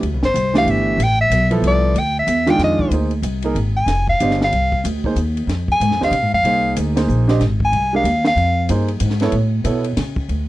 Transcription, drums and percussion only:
0.03 ride medium
0.23 snare medium
0.35 hi-hat pedal medium
0.35 ride medium
0.55 snare medium
0.55 ride medium
0.68 ride medium
1.00 hi-hat pedal medium
1.00 ride medium
1.31 hi-hat pedal medium
1.31 ride medium
1.51 ride medium
1.64 ride medium
1.96 ride medium
2.28 hi-hat pedal medium
2.28 ride medium
2.47 snare soft
2.47 ride soft
2.59 snare soft
2.59 ride medium
2.79 kick medium
2.91 hi-hat pedal medium
2.91 ride medium
3.11 ride soft
3.23 hi-hat pedal medium
3.23 ride medium
3.42 ride soft
3.56 ride medium
3.88 snare soft
3.88 hi-hat pedal medium
3.88 ride medium
4.07 kick soft
4.20 hi-hat pedal medium
4.20 ride medium
4.31 snare soft
4.41 snare soft
4.53 ride medium
4.72 kick medium
4.85 hi-hat pedal medium
4.85 ride medium
5.04 kick soft
5.16 hi-hat pedal medium
5.16 ride medium
5.37 ride soft
5.49 snare soft
5.49 ride medium
5.68 kick medium
5.81 hi-hat pedal medium
5.81 ride medium
5.91 snare soft
6.02 snare soft
6.13 ride medium
6.45 ride medium
6.76 hi-hat pedal medium
6.76 ride medium
6.97 snare medium
6.97 ride medium
7.09 hi-hat pedal medium
7.29 snare soft
7.29 ride soft
7.41 snare soft
7.41 ride medium
7.60 kick medium
7.73 ride medium
8.05 hi-hat pedal medium
8.05 ride medium
8.25 snare medium
8.37 ride medium
8.69 hi-hat pedal medium
8.69 ride medium
8.88 ride soft
9.00 hi-hat pedal medium
9.00 ride medium
9.10 snare soft
9.20 snare soft
9.20 ride medium
9.32 ride medium
9.65 hi-hat pedal medium
9.65 ride medium
9.84 ride soft
9.97 snare soft
9.97 ride medium
10.16 kick medium
10.29 ride medium

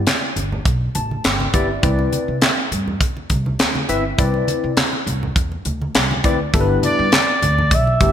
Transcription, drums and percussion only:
0.07 snare loud
0.07 clap medium
0.07 closed hi-hat medium
0.07 muted conga soft
0.07 high conga soft
0.36 closed hi-hat medium
0.36 low conga medium
0.52 low conga medium
0.65 kick loud
0.65 closed hi-hat medium
0.95 closed hi-hat medium
0.95 high conga medium
1.11 high conga medium
1.24 snare loud
1.24 clap medium
1.24 closed hi-hat medium
1.40 high conga medium
1.54 kick medium
1.54 closed hi-hat medium
1.83 kick loud
1.83 closed hi-hat medium
1.83 muted conga soft
1.99 muted conga soft
2.13 closed hi-hat medium
2.13 high conga medium
2.42 snare loud
2.42 clap medium
2.42 closed hi-hat medium
2.42 high conga medium
2.72 closed hi-hat medium
2.72 low conga medium
2.88 low conga medium
3.01 kick loud
3.01 closed hi-hat medium
3.01 muted conga soft
3.17 muted conga soft
3.30 kick medium
3.30 closed hi-hat medium
3.30 high conga medium
3.46 high conga medium
3.59 snare loud
3.59 clap medium
3.59 closed hi-hat medium
3.75 high conga medium
3.89 closed hi-hat medium
4.18 kick loud
4.18 closed hi-hat medium
4.18 muted conga soft
4.34 muted conga soft
4.48 closed hi-hat medium
4.48 high conga medium
4.77 snare medium
4.77 clap medium
4.77 closed hi-hat medium
4.77 muted conga soft
4.77 high conga medium
4.93 muted conga soft
5.07 closed hi-hat medium
5.07 low conga medium
5.23 low conga medium
5.36 kick loud
5.36 closed hi-hat medium
5.36 muted conga soft
5.52 muted conga soft
5.65 closed hi-hat medium
5.65 high conga medium
5.82 high conga medium
5.95 snare loud
5.95 clap medium
5.95 closed hi-hat medium
5.95 muted conga soft
6.11 muted conga soft
6.11 high conga medium
6.24 kick medium
6.24 closed hi-hat medium
6.54 kick loud
6.54 closed hi-hat medium
6.54 muted conga soft
6.83 closed hi-hat medium
6.83 high conga medium
7.12 snare loud
7.12 clap loud
7.12 closed hi-hat medium
7.12 high conga medium
7.43 closed hi-hat medium
7.43 low conga medium
7.58 low conga medium
7.71 kick loud
7.71 closed hi-hat loud
7.87 muted conga soft
8.01 kick medium
8.01 closed hi-hat medium
8.01 high conga medium

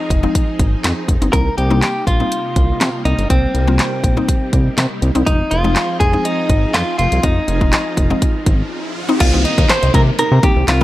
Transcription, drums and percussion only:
0.10 kick medium
0.10 closed hi-hat medium
0.35 kick medium
0.35 closed hi-hat medium
0.59 kick medium
0.59 closed hi-hat medium
0.84 snare medium
0.84 clap loud
0.84 closed hi-hat medium
1.08 kick medium
1.08 closed hi-hat medium
1.22 closed hi-hat medium
1.33 kick loud
1.33 closed hi-hat loud
1.58 closed hi-hat medium
1.82 snare medium
1.82 clap loud
1.82 closed hi-hat medium
2.07 kick medium
2.07 closed hi-hat medium
2.32 closed hi-hat loud
2.56 kick medium
2.56 closed hi-hat medium
2.81 snare medium
2.81 clap loud
2.81 closed hi-hat medium
3.05 closed hi-hat medium
3.19 closed hi-hat medium
3.30 kick loud
3.30 closed hi-hat loud
3.55 closed hi-hat medium
3.79 snare medium
3.79 clap loud
3.79 closed hi-hat medium
4.04 kick medium
4.04 closed hi-hat medium
4.28 kick loud
4.28 closed hi-hat medium
4.53 kick medium
4.53 closed hi-hat medium
4.78 snare medium
4.78 clap loud
4.78 closed hi-hat medium
5.02 closed hi-hat medium
5.15 closed hi-hat medium
5.27 kick loud
5.27 closed hi-hat loud
5.51 closed hi-hat medium
5.76 snare medium
5.76 clap loud
5.76 closed hi-hat medium
6.00 kick medium
6.00 closed hi-hat medium
6.25 closed hi-hat medium
6.50 kick medium
6.50 closed hi-hat medium
6.74 snare medium
6.74 clap loud
6.74 closed hi-hat medium
6.99 closed hi-hat medium
7.12 closed hi-hat medium
7.23 kick loud
7.23 closed hi-hat loud
7.48 closed hi-hat medium
7.61 kick medium
7.73 snare medium
7.73 clap loud
7.73 closed hi-hat medium
7.97 kick medium
7.97 closed hi-hat medium
8.22 kick medium
8.22 closed hi-hat loud
8.46 kick medium
8.46 closed hi-hat medium
9.20 kick loud
9.20 closed hi-hat loud
9.20 crash loud
9.45 closed hi-hat medium
9.58 kick loud
9.58 closed hi-hat soft
9.69 snare medium
9.69 clap loud
9.69 closed hi-hat medium
9.83 closed hi-hat medium
9.94 kick loud
9.94 closed hi-hat medium
10.19 closed hi-hat loud
10.43 kick medium
10.43 closed hi-hat medium
10.68 snare medium
10.68 clap loud
10.68 closed hi-hat loud

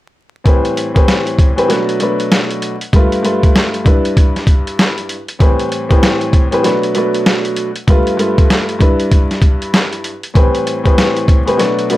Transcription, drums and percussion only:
0.46 kick loud
0.46 closed hi-hat medium
0.65 closed hi-hat soft
0.77 closed hi-hat medium
0.96 kick medium
0.96 closed hi-hat medium
1.08 snare loud
1.08 closed hi-hat loud
1.27 closed hi-hat soft
1.38 kick loud
1.38 closed hi-hat medium
1.58 closed hi-hat medium
1.70 snare soft
1.70 closed hi-hat medium
1.89 closed hi-hat soft
2.00 closed hi-hat medium
2.20 closed hi-hat medium
2.32 snare loud
2.32 closed hi-hat medium
2.51 closed hi-hat soft
2.62 closed hi-hat medium
2.81 closed hi-hat medium
2.93 kick loud
2.93 closed hi-hat medium
3.12 closed hi-hat soft
3.25 closed hi-hat medium
3.43 kick medium
3.43 closed hi-hat medium
3.56 snare loud
3.56 closed hi-hat loud
3.74 closed hi-hat soft
3.86 kick loud
3.86 closed hi-hat medium
4.05 closed hi-hat medium
4.17 kick loud
4.17 closed hi-hat medium
4.36 snare soft
4.36 closed hi-hat soft
4.47 kick medium
4.47 closed hi-hat medium
4.67 closed hi-hat medium
4.79 snare loud
4.79 closed hi-hat medium
4.98 closed hi-hat soft
5.09 closed hi-hat medium
5.28 closed hi-hat medium
5.40 kick loud
5.40 closed hi-hat medium
5.60 closed hi-hat medium
5.72 closed hi-hat medium
5.91 kick medium
5.91 closed hi-hat medium
6.03 snare loud
6.03 closed hi-hat loud
6.21 closed hi-hat soft
6.33 kick medium
6.33 closed hi-hat medium
6.52 closed hi-hat medium
6.64 snare soft
6.64 closed hi-hat medium
6.83 closed hi-hat soft
6.95 closed hi-hat medium
7.14 closed hi-hat medium
7.26 snare loud
7.26 closed hi-hat medium
7.45 closed hi-hat medium
7.56 closed hi-hat medium
7.76 closed hi-hat medium
7.88 kick loud
7.88 closed hi-hat medium
8.07 closed hi-hat medium
8.19 closed hi-hat medium
8.38 kick medium
8.38 closed hi-hat medium
8.50 snare loud
8.50 closed hi-hat loud
8.69 closed hi-hat medium
8.81 kick medium
8.81 closed hi-hat medium
9.00 closed hi-hat medium
9.12 kick loud
9.12 closed hi-hat medium
9.31 snare soft
9.31 closed hi-hat soft
9.42 kick medium
9.42 closed hi-hat medium
9.62 closed hi-hat medium
9.74 snare loud
9.74 closed hi-hat loud
9.93 closed hi-hat medium
10.04 closed hi-hat medium
10.23 closed hi-hat medium
10.35 kick loud
10.35 closed hi-hat medium
10.55 closed hi-hat soft
10.67 closed hi-hat medium
10.86 kick medium
10.86 closed hi-hat medium
10.98 snare loud
10.98 closed hi-hat loud
11.17 closed hi-hat soft
11.28 kick medium
11.28 closed hi-hat medium
11.48 closed hi-hat medium
11.59 snare soft
11.59 closed hi-hat medium
11.79 closed hi-hat soft
11.90 closed hi-hat medium

